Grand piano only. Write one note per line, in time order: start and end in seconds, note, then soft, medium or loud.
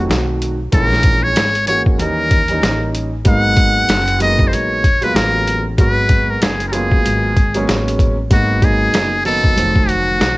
0.00 0.56 D#3 medium
0.00 0.56 F#3 medium
0.00 0.56 A3 medium
0.00 0.57 C4 medium
0.00 0.57 F#4 medium
0.72 1.46 E3 medium
0.72 1.46 G#3 medium
0.72 1.47 A#3 medium
0.72 1.47 C#4 medium
0.72 1.48 E4 medium
1.66 1.97 E3 medium
1.66 1.99 G#3 medium
1.66 1.98 A#3 medium
1.66 1.99 C#4 medium
1.66 2.00 F#4 medium
1.98 2.38 E3 medium
1.98 2.38 G3 medium
1.98 2.39 A#3 medium
1.98 2.39 C#4 medium
1.98 2.39 D#4 medium
2.48 3.09 E3 medium
2.48 3.09 G3 medium
2.48 3.09 A#3 medium
2.48 3.10 C#4 medium
2.48 3.10 D#4 medium
3.24 3.99 F#3 medium
3.24 3.99 G#3 medium
3.24 4.00 A#3 medium
3.24 4.00 B3 medium
3.24 4.00 D#4 medium
4.19 4.81 F#3 medium
4.19 4.81 G#3 medium
4.19 4.81 A#3 medium
4.19 4.81 B3 medium
4.19 4.82 D#4 medium
5.02 5.61 F#3 medium
5.02 5.62 G#3 medium
5.02 5.62 A#3 medium
5.02 5.63 B3 medium
5.02 5.63 F4 medium
5.78 6.52 F#3 medium
5.78 6.52 G#3 medium
5.78 6.53 B3 medium
5.78 6.53 F#4 medium
6.72 7.33 F#3 medium
6.72 7.34 G#3 medium
6.72 7.34 A#3 medium
6.72 7.34 B3 medium
6.72 7.35 F4 medium
7.55 8.14 F#3 medium
7.55 8.14 G#3 medium
7.55 8.15 A#3 medium
7.55 8.15 B3 medium
7.55 8.15 C#4 medium
8.31 8.56 F#3 medium
8.31 8.57 G#3 medium
8.31 8.57 A#3 medium
8.31 8.57 B3 medium
8.31 8.58 D#4 medium
8.62 9.13 F#3 medium
8.62 9.13 G#3 medium
8.62 9.14 A#3 medium
8.62 9.14 B3 medium
8.62 9.14 D#4 medium
9.25 9.55 D#3 medium
9.25 9.55 F#3 medium
9.25 9.58 A#3 medium
9.25 9.58 B3 medium
9.25 9.58 D#4 medium
9.56 10.38 D#3 medium
9.56 10.38 F3 medium
9.56 10.38 F#3 medium
9.56 10.38 A3 medium
9.56 10.38 C4 medium